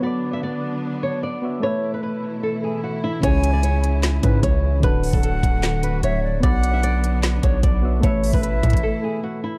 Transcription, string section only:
0, 0, Header, 1, 2, 480
1, 0, Start_track
1, 0, Tempo, 400000
1, 41, Time_signature, 4, 2, 24, 8
1, 11497, End_track
2, 0, Start_track
2, 0, Title_t, "String section"
2, 0, Program_c, 0, 48
2, 0, Note_on_c, 0, 54, 70
2, 40, Note_on_c, 0, 62, 87
2, 41, Note_on_c, 0, 50, 78
2, 41, Note_on_c, 0, 59, 73
2, 1922, Note_off_c, 0, 54, 0
2, 1941, Note_off_c, 0, 50, 0
2, 1941, Note_off_c, 0, 59, 0
2, 1941, Note_off_c, 0, 62, 0
2, 1960, Note_on_c, 0, 47, 79
2, 1960, Note_on_c, 0, 52, 74
2, 1960, Note_on_c, 0, 57, 69
2, 1960, Note_on_c, 0, 64, 89
2, 3861, Note_off_c, 0, 47, 0
2, 3861, Note_off_c, 0, 57, 0
2, 3879, Note_on_c, 0, 56, 69
2, 3880, Note_on_c, 0, 49, 81
2, 5762, Note_off_c, 0, 52, 0
2, 5762, Note_off_c, 0, 64, 0
2, 5781, Note_off_c, 0, 49, 0
2, 5781, Note_off_c, 0, 56, 0
2, 5800, Note_on_c, 0, 50, 77
2, 5800, Note_on_c, 0, 54, 70
2, 5800, Note_on_c, 0, 57, 72
2, 5800, Note_on_c, 0, 66, 87
2, 7701, Note_off_c, 0, 50, 0
2, 7701, Note_off_c, 0, 57, 0
2, 7701, Note_off_c, 0, 66, 0
2, 7719, Note_on_c, 0, 50, 78
2, 7719, Note_on_c, 0, 59, 74
2, 7719, Note_on_c, 0, 62, 87
2, 9602, Note_off_c, 0, 54, 0
2, 9620, Note_off_c, 0, 62, 0
2, 9621, Note_off_c, 0, 50, 0
2, 9621, Note_off_c, 0, 59, 0
2, 9641, Note_on_c, 0, 47, 76
2, 9641, Note_on_c, 0, 52, 73
2, 9641, Note_on_c, 0, 57, 73
2, 9641, Note_on_c, 0, 64, 86
2, 11497, Note_off_c, 0, 47, 0
2, 11497, Note_off_c, 0, 52, 0
2, 11497, Note_off_c, 0, 57, 0
2, 11497, Note_off_c, 0, 64, 0
2, 11497, End_track
0, 0, End_of_file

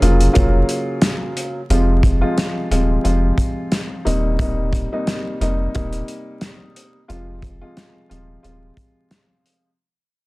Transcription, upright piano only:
0, 0, Header, 1, 2, 480
1, 0, Start_track
1, 0, Key_signature, -4, "minor"
1, 0, Tempo, 674157
1, 1208, Time_signature, 4, 2, 24, 8
1, 7311, End_track
2, 0, Start_track
2, 0, Title_t, "Upright piano"
2, 0, Program_c, 0, 0
2, 13, Note_on_c, 0, 49, 91
2, 14, Note_on_c, 0, 54, 81
2, 15, Note_on_c, 0, 58, 83
2, 16, Note_on_c, 0, 65, 96
2, 225, Note_off_c, 0, 49, 0
2, 225, Note_off_c, 0, 54, 0
2, 226, Note_off_c, 0, 58, 0
2, 228, Note_off_c, 0, 65, 0
2, 235, Note_on_c, 0, 49, 83
2, 236, Note_on_c, 0, 54, 85
2, 237, Note_on_c, 0, 58, 84
2, 239, Note_on_c, 0, 65, 99
2, 1131, Note_off_c, 0, 49, 0
2, 1131, Note_off_c, 0, 54, 0
2, 1132, Note_off_c, 0, 58, 0
2, 1133, Note_off_c, 0, 65, 0
2, 1210, Note_on_c, 0, 48, 94
2, 1211, Note_on_c, 0, 53, 86
2, 1213, Note_on_c, 0, 56, 78
2, 1213, Note_on_c, 0, 65, 91
2, 1548, Note_off_c, 0, 48, 0
2, 1548, Note_off_c, 0, 53, 0
2, 1549, Note_off_c, 0, 56, 0
2, 1549, Note_off_c, 0, 65, 0
2, 1573, Note_on_c, 0, 48, 87
2, 1574, Note_on_c, 0, 53, 84
2, 1575, Note_on_c, 0, 56, 79
2, 1576, Note_on_c, 0, 65, 98
2, 1899, Note_off_c, 0, 48, 0
2, 1899, Note_off_c, 0, 53, 0
2, 1900, Note_off_c, 0, 56, 0
2, 1900, Note_off_c, 0, 65, 0
2, 1929, Note_on_c, 0, 48, 91
2, 1931, Note_on_c, 0, 53, 84
2, 1932, Note_on_c, 0, 56, 79
2, 1933, Note_on_c, 0, 65, 90
2, 2151, Note_off_c, 0, 48, 0
2, 2152, Note_off_c, 0, 53, 0
2, 2152, Note_off_c, 0, 56, 0
2, 2153, Note_off_c, 0, 65, 0
2, 2163, Note_on_c, 0, 48, 89
2, 2164, Note_on_c, 0, 53, 80
2, 2166, Note_on_c, 0, 56, 76
2, 2167, Note_on_c, 0, 65, 97
2, 2870, Note_off_c, 0, 48, 0
2, 2881, Note_on_c, 0, 48, 95
2, 2882, Note_on_c, 0, 55, 81
2, 2884, Note_on_c, 0, 58, 78
2, 2885, Note_on_c, 0, 63, 98
2, 2886, Note_off_c, 0, 53, 0
2, 2887, Note_off_c, 0, 56, 0
2, 2887, Note_off_c, 0, 65, 0
2, 3107, Note_off_c, 0, 48, 0
2, 3107, Note_off_c, 0, 55, 0
2, 3108, Note_off_c, 0, 58, 0
2, 3109, Note_off_c, 0, 63, 0
2, 3138, Note_on_c, 0, 48, 85
2, 3138, Note_on_c, 0, 55, 80
2, 3140, Note_on_c, 0, 58, 74
2, 3141, Note_on_c, 0, 63, 96
2, 3472, Note_off_c, 0, 48, 0
2, 3472, Note_off_c, 0, 55, 0
2, 3473, Note_off_c, 0, 58, 0
2, 3473, Note_off_c, 0, 63, 0
2, 3504, Note_on_c, 0, 48, 88
2, 3505, Note_on_c, 0, 55, 79
2, 3507, Note_on_c, 0, 58, 78
2, 3508, Note_on_c, 0, 63, 98
2, 3824, Note_off_c, 0, 48, 0
2, 3825, Note_off_c, 0, 55, 0
2, 3826, Note_off_c, 0, 58, 0
2, 3826, Note_off_c, 0, 63, 0
2, 3849, Note_on_c, 0, 48, 92
2, 3851, Note_on_c, 0, 55, 86
2, 3852, Note_on_c, 0, 58, 81
2, 3852, Note_on_c, 0, 63, 104
2, 4071, Note_off_c, 0, 48, 0
2, 4071, Note_off_c, 0, 55, 0
2, 4072, Note_off_c, 0, 58, 0
2, 4072, Note_off_c, 0, 63, 0
2, 4089, Note_on_c, 0, 48, 84
2, 4090, Note_on_c, 0, 55, 85
2, 4092, Note_on_c, 0, 58, 91
2, 4094, Note_on_c, 0, 63, 99
2, 4978, Note_off_c, 0, 48, 0
2, 4979, Note_off_c, 0, 55, 0
2, 4980, Note_off_c, 0, 58, 0
2, 4980, Note_off_c, 0, 63, 0
2, 5042, Note_on_c, 0, 48, 85
2, 5043, Note_on_c, 0, 53, 84
2, 5046, Note_on_c, 0, 56, 76
2, 5046, Note_on_c, 0, 65, 102
2, 5384, Note_off_c, 0, 48, 0
2, 5384, Note_off_c, 0, 53, 0
2, 5386, Note_off_c, 0, 56, 0
2, 5386, Note_off_c, 0, 65, 0
2, 5419, Note_on_c, 0, 48, 92
2, 5420, Note_on_c, 0, 53, 80
2, 5421, Note_on_c, 0, 56, 86
2, 5422, Note_on_c, 0, 65, 104
2, 5741, Note_off_c, 0, 48, 0
2, 5742, Note_off_c, 0, 53, 0
2, 5743, Note_off_c, 0, 56, 0
2, 5743, Note_off_c, 0, 65, 0
2, 5762, Note_on_c, 0, 48, 91
2, 5764, Note_on_c, 0, 53, 83
2, 5764, Note_on_c, 0, 56, 75
2, 5766, Note_on_c, 0, 65, 98
2, 5987, Note_off_c, 0, 48, 0
2, 5988, Note_off_c, 0, 53, 0
2, 5988, Note_off_c, 0, 56, 0
2, 5989, Note_off_c, 0, 65, 0
2, 6001, Note_on_c, 0, 48, 89
2, 6002, Note_on_c, 0, 53, 84
2, 6003, Note_on_c, 0, 56, 81
2, 6004, Note_on_c, 0, 65, 101
2, 6894, Note_off_c, 0, 48, 0
2, 6895, Note_off_c, 0, 53, 0
2, 6895, Note_off_c, 0, 56, 0
2, 6896, Note_off_c, 0, 65, 0
2, 7311, End_track
0, 0, End_of_file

